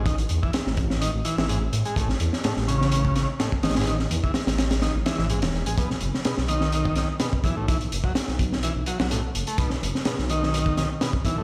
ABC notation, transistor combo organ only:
X:1
M:4/4
L:1/16
Q:"Swing 16ths" 1/4=126
K:Bmix
V:1 name="Transistor combo organ" clef=bass
D, z2 E, z4 D, z E, E, G,, z2 G, | A,, z3 A,, z C,4 C, z A,, z D, G,, | D, z2 E, z4 D, z E, E, G,, z2 G, | B,, z3 B,, z D,4 D, z B,, z E, A,, |
E, z2 F, z4 E, z F, F, A,, z2 A, | B,, z3 B,, z D,4 D, z B,, z E, A,, |]